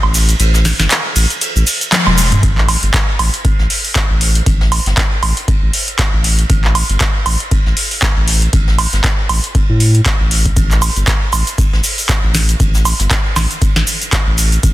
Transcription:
0.03 A1, high woodblock
0.14 open hi-hat, ride, shaker
0.29 closed hi-hat, shaker
0.40 A1, closed hi-hat, ride, shaker
0.54 snare, shaker
0.65 snare, open hi-hat, ride, shaker
0.79 G1, snare, closed hi-hat, shaker
0.90 snare, clap, closed hi-hat, ride, shaker
1.15 A1, open hi-hat, ride, shaker
1.30 closed hi-hat, shaker
1.41 closed hi-hat, ride, shaker
1.56 A1, shaker
1.67 open hi-hat, ride, shaker
1.81 closed hi-hat, shaker
1.92 snare, clap, closed hi-hat, high tom, ride, shaker
2.07 E1, high tom, high woodblock
2.18 open hi-hat, ride, shaker
2.32 closed hi-hat, mid tom, shaker
2.42 A1, kick, closed hi-hat, ride
2.58 clap, ride
2.69 open hi-hat, ride, high woodblock
2.83 G1, closed hi-hat, ride
2.94 kick, snare, clap, closed hi-hat
3.19 A1, open hi-hat, ride, high woodblock
3.34 closed hi-hat
3.44 kick, closed hi-hat, ride
3.59 A1, snare
3.70 open hi-hat, ride
3.85 open hi-hat
3.95 kick, snare, clap, closed hi-hat
4.10 A1
4.21 open hi-hat, ride
4.35 closed hi-hat
4.46 A1, kick, closed hi-hat, ride
4.61 snare
4.71 open hi-hat, ride, high woodblock
4.86 G1, snare, closed hi-hat
4.97 kick, snare, clap, closed hi-hat, ride
5.23 A1, open hi-hat, ride, high woodblock
5.37 closed hi-hat
5.48 kick, closed hi-hat, ride
5.62 A1
5.73 open hi-hat, ride
5.88 closed hi-hat
5.99 kick, snare, clap, closed hi-hat
6.13 A1
6.24 open hi-hat, ride
6.39 closed hi-hat
6.49 A1, kick, closed hi-hat, ride
6.63 clap, ride
6.75 open hi-hat, ride, high woodblock
6.89 G1, closed hi-hat, ride
7.00 kick, snare, clap, closed hi-hat
7.26 A1, open hi-hat, ride, high woodblock
7.40 closed hi-hat
7.51 kick, closed hi-hat, ride
7.66 A1, snare
7.77 open hi-hat, ride
7.91 open hi-hat
8.02 kick, snare, clap, closed hi-hat
8.17 A1
8.27 open hi-hat, ride
8.42 closed hi-hat
8.53 A1, kick, closed hi-hat, ride
8.68 snare
8.78 open hi-hat, ride, high woodblock
8.93 G1, snare, closed hi-hat
9.04 kick, snare, clap, closed hi-hat, ride
9.29 A1, open hi-hat, ride, high woodblock
9.44 closed hi-hat
9.55 kick, closed hi-hat, ride
9.69 A2
9.79 open hi-hat, ride
9.95 closed hi-hat
10.05 kick, snare, clap, closed hi-hat, ride
10.20 A1
10.31 open hi-hat, ride
10.45 kick, closed hi-hat
10.56 A1, kick, closed hi-hat, ride, shaker
10.71 clap, ride, shaker
10.82 open hi-hat, ride, high woodblock, shaker
10.96 G1, closed hi-hat, ride, shaker
11.07 kick, snare, clap, closed hi-hat, shaker
11.33 A1, open hi-hat, ride, high woodblock, shaker
11.47 closed hi-hat, shaker
11.58 kick, closed hi-hat, ride, shaker
11.73 A1, snare
11.84 open hi-hat, ride, shaker
11.98 open hi-hat, shaker
12.09 kick, snare, clap, closed hi-hat, shaker
12.24 A1
12.35 snare, open hi-hat, ride, shaker
12.49 closed hi-hat, shaker
12.60 A1, kick, closed hi-hat, ride, shaker
12.75 snare, shaker
12.85 open hi-hat, ride, high woodblock, shaker
12.99 G1, snare, closed hi-hat, shaker
13.11 kick, snare, clap, closed hi-hat, ride, shaker
13.36 A1, snare, open hi-hat, high woodblock, shaker
13.51 closed hi-hat, shaker
13.61 kick, closed hi-hat, ride, shaker
13.76 A1, snare
13.86 open hi-hat, ride, shaker
14.01 closed hi-hat, shaker
14.12 kick, snare, clap, closed hi-hat, ride, shaker
14.27 A1
14.38 open hi-hat, ride, shaker
14.52 closed hi-hat, shaker
14.63 A1, kick, closed hi-hat, ride, shaker

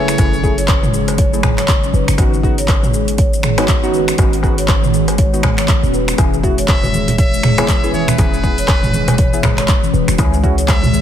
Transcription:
Already playing: F#1 C#3 F#3 A3 E4 G#4 C#5
0.08 finger snap, closed hi-hat, shaker
0.18 F#1 A3 C#4 D#4 E4 G#4, kick, closed hi-hat, darbuka tek, shaker
0.34 shaker
0.43 A3 E4 G#4, kick, shaker
0.58 C#5, closed hi-hat, shaker
0.68 kick, clap, closed hi-hat, darbuka ka, darbuka tek, shaker
0.83 G#3, mid tom, shaker
0.93 G#4, shaker
1.08 closed hi-hat, darbuka ka, shaker
1.18 C#5, kick, closed hi-hat, shaker
1.33 A3 E4 G#4, shaker
1.43 G#4, finger snap, kick, mid tom, darbuka ka, darbuka tek, shaker
1.58 C#5, finger snap, clap, closed hi-hat, shaker
1.68 kick, clap, closed hi-hat, shaker
1.83 C#4, shaker
1.94 F#1 B4, shaker
2.08 F#1, finger snap, closed hi-hat, shaker
2.18 G#1 D#3 G#3 B3 C#4 D#4 F#4, kick, closed hi-hat, darbuka tek, shaker
2.34 shaker
2.43 B3 D#4 F#4 G#4, kick, shaker
2.58 C#5, closed hi-hat, shaker
2.68 kick, clap, closed hi-hat, darbuka ka, darbuka tek, shaker
2.83 G#3, mid tom, shaker
2.94 G#4, shaker
3.08 closed hi-hat, shaker
3.18 C#5, kick, closed hi-hat, shaker
3.33 shaker
3.43 G#4, finger snap, mid tom, shaker
3.58 B3 D#4 F#4 C#5, finger snap, closed hi-hat, darbuka tek, shaker
3.68 kick, clap, closed hi-hat, shaker
3.83 B3 C#4 D#4 F#4, shaker
3.93 B4, shaker
4.08 finger snap, closed hi-hat, shaker
4.18 G#1 B3 C#4 D#4 F#4, kick, closed hi-hat, darbuka tek, shaker
4.33 closed hi-hat, shaker
4.43 B3 D#4 F#4 G#4, kick, darbuka ka, shaker
4.58 C#5, closed hi-hat, shaker
4.68 kick, clap, closed hi-hat, darbuka ka, darbuka tek, shaker
4.83 G#3, mid tom, shaker
4.94 G#4, shaker
5.08 closed hi-hat, darbuka ka, shaker
5.18 C#5, kick, closed hi-hat, shaker
5.33 B3 D#4 F#4, shaker
5.43 G#4, finger snap, kick, mid tom, darbuka ka, darbuka tek, shaker
5.58 C#5, finger snap, clap, closed hi-hat, shaker
5.68 kick, clap, closed hi-hat, shaker
5.83 D#1 C#4, shaker
5.94 B4, shaker
6.08 finger snap, closed hi-hat, shaker
6.18 E1 B2 E3 B3 E4 G#4, kick, closed hi-hat, darbuka tek, high conga, shaker
6.34 shaker
6.43 B3 E4 F#4 G#4, kick, muted conga, shaker
6.58 C#5, closed hi-hat, shaker
6.68 E5, kick, clap, closed hi-hat, darbuka ka, muted conga, darbuka tek, shaker
6.83 G#3, mid tom, low conga, shaker
6.94 G#4, muted conga, high conga, shaker
7.08 closed hi-hat, low conga, shaker
7.18 C#5 E5, kick, closed hi-hat, shaker
7.33 muted conga, shaker
7.43 G#4, finger snap, mid tom, low conga, shaker
7.58 B3 E4 G#4 C#5, finger snap, closed hi-hat, muted conga, darbuka tek, high conga, shaker
7.68 kick, clap, closed hi-hat, shaker
7.83 B3 C#4 E4 G#4, muted conga, shaker
7.93 B4 C#5, high conga, shaker
8.08 B4, finger snap, closed hi-hat, muted conga, high conga, low conga, shaker
8.18 E1 B3 C#4 E4 F#4 G#4, kick, closed hi-hat, high conga, darbuka tek, shaker
8.34 shaker
8.44 B3 E4 G#4, kick, muted conga, shaker
8.58 C#5, closed hi-hat, shaker
8.68 kick, clap, closed hi-hat, darbuka ka, muted conga, darbuka tek, shaker
8.83 G#3, mid tom, low conga, shaker
8.93 G#4, muted conga, high conga, shaker
9.07 closed hi-hat, darbuka ka, low conga, shaker
9.18 C#5, kick, closed hi-hat, shaker
9.33 B3 E4 G#4, muted conga, shaker
9.43 G#4, finger snap, kick, mid tom, darbuka ka, high conga, darbuka tek, low conga, shaker
9.58 C#5, finger snap, clap, closed hi-hat, muted conga, shaker
9.68 kick, clap, closed hi-hat, shaker
9.83 C#4, muted conga, high conga, shaker
9.94 E1 B4, shaker
10.08 E1, finger snap, closed hi-hat, muted conga, shaker
10.18 C#2 C#3 E3 C#4 E4 G#4, kick, closed hi-hat, darbuka tek, high conga, shaker
10.34 shaker
10.43 C#4 E4 F#4 G#4, kick, muted conga, shaker
10.58 C#5, closed hi-hat, shaker
10.68 E5, kick, clap, closed hi-hat, darbuka ka, muted conga, darbuka tek, shaker
10.83 G#3, mid tom, low conga, shaker
10.93 G#4, muted conga, high conga, shaker

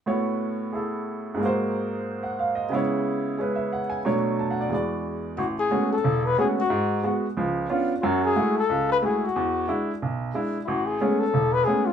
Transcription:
0.06 A2 A3 B3 F#4 C#5
0.72 E4 G#4 A4
1.34 G#2 G#3
1.40 A#3 F#4
1.46 C5
2.23 F#5
2.39 F5
2.55 D#5
2.69 C#3 G#3 B3 E4
2.75 C#5
3.38 G#3 C#4 B4
3.55 E5
3.73 F#5
3.90 G#5
4.05 B2 F#3 A3 D4 C#5
4.39 A5
4.51 F#5
4.61 D5
4.69 E2 E3 G#3
4.73 F#4 D5
5.37 A1 F#4
5.59 G#4
5.71 G#3 A3 B3 C#4 F#4
5.93 A4
6.04 E1
6.26 B4
6.38 G#3 A3 B3 C#4 F#4 G#4
6.60 F#4
6.70 G#2
7.04 G#3 B3 F#4
7.37 C#2 F3
7.70 B3 C#4 D4 F4
8.01 F#2 F#3 F4 F#4
8.25 G#4
8.36 G#3 A3 E4 F#4
8.58 A4
8.69 C#2
8.92 B4
9.02 G#3 A3 E4 F#4 G#4
9.25 F#4
9.36 E2
9.68 G#3 D4 E4
10.02 B1
10.34 G#3 D4 E4
10.65 A1 E4 F#4
10.87 G#4
11.01 G#3 A3 B3 C#4
11.20 A4
11.34 E1
11.53 B4
11.65 G#3 A3 B3 C#4 G#4
11.86 F4

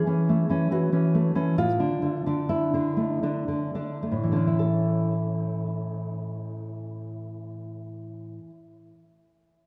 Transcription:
Already playing: G#4
0.07 E3 C#4
0.29 A3
0.50 E3 C#4
0.71 E3 F#4
0.92 E3 C#4
1.15 A3
1.35 E3 C#4
1.58 A2 F4
1.79 D3 D4
2.02 D3
2.26 D3 D4
2.49 E4
2.74 D3 D4
2.97 A3
3.23 D3 D4
3.48 D3
3.75 D3 D4
4.03 A3
4.12 A2
4.23 E3
4.32 D3 C#4 D4
4.47 E4
4.59 A4

